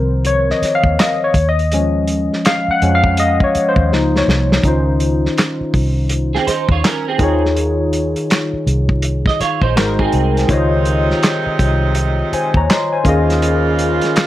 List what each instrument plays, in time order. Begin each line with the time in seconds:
Already playing: fingered electric bass C2, tine electric piano D#3 F3 C4 A#4 C5
0.25 tine electric piano C#5, closed hi-hat
0.50 tine electric piano D#5, snare
0.62 muted fingered electric bass stroke, snare, closed hi-hat
0.75 tine electric piano F5
0.84 fingered electric bass D#2, kick
0.99 tine electric piano D#5, snare, clap, closed hi-hat
1.24 tine electric piano C#5
1.34 fingered electric bass D#2, kick, closed hi-hat
1.49 tine electric piano D#5
1.59 closed hi-hat
1.72 tine electric piano F3 G#3 C#4, closed hi-hat
2.07 closed hi-hat
2.33 snare
2.45 tine electric piano F5, snare, clap, closed hi-hat
2.68 tine electric piano F#5, muted fingered electric bass stroke
2.82 fingered electric bass F2, tine electric piano F3 G#3 C#4, closed hi-hat
2.95 tine electric piano F5
3.04 kick
3.17 tine electric piano D#5, closed hi-hat
3.40 tine electric piano C#5, kick
3.55 muted fingered electric bass stroke, closed hi-hat
3.69 tine electric piano C5
3.76 fingered electric bass D#2, kick
3.92 fingered electric bass C#2, tine electric piano F3 A#3 D#4, snare
4.16 tine electric piano C#5, snare
4.28 fingered electric bass C2, snare
4.52 snare
4.63 fingered electric bass C#2, tine electric piano D#3 C#4 D#4 F4, kick, closed hi-hat
4.68 tine electric piano C5
5.00 closed hi-hat
5.26 snare
5.38 snare, clap, closed hi-hat
5.61 muted fingered electric bass stroke
5.74 fingered electric bass C2, kick, open hi-hat
6.09 closed hi-hat
6.35 clean electric guitar C4 G#4, snare
6.47 clean electric guitar D#4 C5, muted fingered electric bass stroke, snare, closed hi-hat
6.69 fingered electric bass D#2, clean electric guitar F4 C#5, kick
6.84 clean electric guitar C#4 A#4, snare, clap, closed hi-hat
7.08 clean electric guitar C4 G#4
7.18 fingered electric bass D#2, tine electric piano D#3 D#4 F4 G#4, kick, closed hi-hat
7.23 tine electric piano C#5
7.45 snare
7.56 closed hi-hat
7.93 closed hi-hat
8.16 closed hi-hat
8.30 snare, clap, closed hi-hat
8.53 muted fingered electric bass stroke
8.67 fingered electric bass C2, closed hi-hat
8.89 kick
9.02 closed hi-hat
9.26 clean electric guitar D#5, kick, snare
9.40 clean electric guitar F4 C#5, muted fingered electric bass stroke, snare, closed hi-hat
9.61 fingered electric bass A#1, clean electric guitar D#4 C5, kick
9.76 fingered electric bass G#1, tine electric piano G#3 D#4 F#4 A#4 C5, clean electric guitar A#4, snare, clap, closed hi-hat
9.99 clean electric guitar C4 G#4, kick
10.12 fingered electric bass C2, closed hi-hat
10.37 snare, closed hi-hat
10.48 fingered electric bass C#2, saxophone section C3 G#3 D#4, tine electric piano D#3 F4 C5 C#5, kick, closed hi-hat
10.53 tine electric piano D#5
10.85 closed hi-hat
11.11 snare
11.23 snare, clap, closed hi-hat
11.46 muted fingered electric bass stroke
11.59 fingered electric bass C2, kick, closed hi-hat
11.95 closed hi-hat
12.32 tine electric piano C5 G#5, muted fingered electric bass stroke, closed hi-hat
12.54 fingered electric bass D#2, tine electric piano C#5 A#5, kick
12.70 tine electric piano D#5 C6, snare, clap, closed hi-hat
12.92 tine electric piano C5 G#5
13.03 fingered electric bass D#2, saxophone section C#3 A#3 F4, tine electric piano D#3 C#4 F4, kick, closed hi-hat
13.08 tine electric piano G#4 D#5
13.30 snare, closed hi-hat
13.42 closed hi-hat
13.79 closed hi-hat
14.01 snare, closed hi-hat
14.16 snare, clap, closed hi-hat